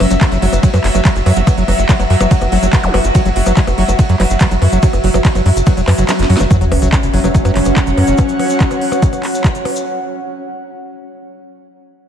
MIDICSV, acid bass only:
0, 0, Header, 1, 2, 480
1, 0, Start_track
1, 0, Tempo, 419580
1, 1683, Time_signature, 4, 2, 24, 8
1, 13825, End_track
2, 0, Start_track
2, 0, Title_t, "Acid bass"
2, 0, Program_c, 0, 38
2, 3, Note_on_c, 0, 54, 79
2, 72, Note_off_c, 0, 54, 0
2, 123, Note_on_c, 0, 54, 106
2, 165, Note_off_c, 0, 54, 0
2, 363, Note_on_c, 0, 54, 77
2, 433, Note_off_c, 0, 54, 0
2, 483, Note_on_c, 0, 54, 105
2, 524, Note_off_c, 0, 54, 0
2, 723, Note_on_c, 0, 54, 86
2, 792, Note_off_c, 0, 54, 0
2, 843, Note_on_c, 0, 54, 102
2, 885, Note_off_c, 0, 54, 0
2, 1083, Note_on_c, 0, 54, 80
2, 1152, Note_off_c, 0, 54, 0
2, 1203, Note_on_c, 0, 54, 106
2, 1245, Note_off_c, 0, 54, 0
2, 1443, Note_on_c, 0, 54, 80
2, 1513, Note_off_c, 0, 54, 0
2, 1563, Note_on_c, 0, 54, 109
2, 1605, Note_off_c, 0, 54, 0
2, 1804, Note_on_c, 0, 54, 80
2, 1873, Note_off_c, 0, 54, 0
2, 1923, Note_on_c, 0, 54, 105
2, 1965, Note_off_c, 0, 54, 0
2, 2163, Note_on_c, 0, 54, 85
2, 2233, Note_off_c, 0, 54, 0
2, 2283, Note_on_c, 0, 54, 102
2, 2325, Note_off_c, 0, 54, 0
2, 2523, Note_on_c, 0, 54, 77
2, 2593, Note_off_c, 0, 54, 0
2, 2643, Note_on_c, 0, 54, 101
2, 2685, Note_off_c, 0, 54, 0
2, 2883, Note_on_c, 0, 54, 77
2, 2952, Note_off_c, 0, 54, 0
2, 3003, Note_on_c, 0, 54, 106
2, 3045, Note_off_c, 0, 54, 0
2, 3243, Note_on_c, 0, 54, 75
2, 3312, Note_off_c, 0, 54, 0
2, 3363, Note_on_c, 0, 54, 110
2, 3405, Note_off_c, 0, 54, 0
2, 3603, Note_on_c, 0, 54, 80
2, 3673, Note_off_c, 0, 54, 0
2, 3723, Note_on_c, 0, 54, 106
2, 3765, Note_off_c, 0, 54, 0
2, 3963, Note_on_c, 0, 54, 78
2, 4033, Note_off_c, 0, 54, 0
2, 4083, Note_on_c, 0, 54, 104
2, 4125, Note_off_c, 0, 54, 0
2, 4324, Note_on_c, 0, 54, 79
2, 4393, Note_off_c, 0, 54, 0
2, 4443, Note_on_c, 0, 54, 105
2, 4485, Note_off_c, 0, 54, 0
2, 4683, Note_on_c, 0, 54, 80
2, 4752, Note_off_c, 0, 54, 0
2, 4803, Note_on_c, 0, 54, 102
2, 4845, Note_off_c, 0, 54, 0
2, 5043, Note_on_c, 0, 54, 83
2, 5113, Note_off_c, 0, 54, 0
2, 5163, Note_on_c, 0, 54, 100
2, 5205, Note_off_c, 0, 54, 0
2, 5403, Note_on_c, 0, 54, 80
2, 5472, Note_off_c, 0, 54, 0
2, 5523, Note_on_c, 0, 54, 100
2, 5565, Note_off_c, 0, 54, 0
2, 5763, Note_on_c, 0, 54, 78
2, 5832, Note_off_c, 0, 54, 0
2, 5883, Note_on_c, 0, 54, 105
2, 5925, Note_off_c, 0, 54, 0
2, 6123, Note_on_c, 0, 54, 76
2, 6192, Note_off_c, 0, 54, 0
2, 6243, Note_on_c, 0, 54, 107
2, 6285, Note_off_c, 0, 54, 0
2, 6483, Note_on_c, 0, 54, 86
2, 6552, Note_off_c, 0, 54, 0
2, 6603, Note_on_c, 0, 54, 103
2, 6645, Note_off_c, 0, 54, 0
2, 6843, Note_on_c, 0, 54, 76
2, 6913, Note_off_c, 0, 54, 0
2, 6963, Note_on_c, 0, 54, 103
2, 7005, Note_off_c, 0, 54, 0
2, 7204, Note_on_c, 0, 54, 81
2, 7273, Note_off_c, 0, 54, 0
2, 7323, Note_on_c, 0, 54, 105
2, 7365, Note_off_c, 0, 54, 0
2, 7443, Note_on_c, 0, 54, 79
2, 7513, Note_off_c, 0, 54, 0
2, 7563, Note_on_c, 0, 54, 104
2, 7605, Note_off_c, 0, 54, 0
2, 7803, Note_on_c, 0, 54, 77
2, 7873, Note_off_c, 0, 54, 0
2, 7923, Note_on_c, 0, 54, 104
2, 7965, Note_off_c, 0, 54, 0
2, 8163, Note_on_c, 0, 54, 78
2, 8233, Note_off_c, 0, 54, 0
2, 8283, Note_on_c, 0, 54, 101
2, 8325, Note_off_c, 0, 54, 0
2, 8523, Note_on_c, 0, 54, 77
2, 8593, Note_off_c, 0, 54, 0
2, 8643, Note_on_c, 0, 54, 102
2, 8685, Note_off_c, 0, 54, 0
2, 8883, Note_on_c, 0, 54, 83
2, 8952, Note_off_c, 0, 54, 0
2, 9003, Note_on_c, 0, 54, 99
2, 9045, Note_off_c, 0, 54, 0
2, 9244, Note_on_c, 0, 54, 79
2, 9313, Note_off_c, 0, 54, 0
2, 13825, End_track
0, 0, End_of_file